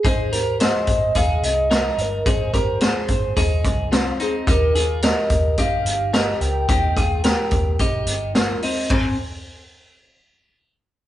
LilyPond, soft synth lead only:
\new Staff \with { instrumentName = "Soft synth lead" } { \time 4/4 \key aes \major \tempo 4 = 108 c''4 ees''4 f''8 ees''4 bes'8 | c''2. r8 aes'8 | bes'4 ees''4 f''4 ees''8 g''8~ | g''2~ g''8 r4. |
aes''8 r2. r8 | }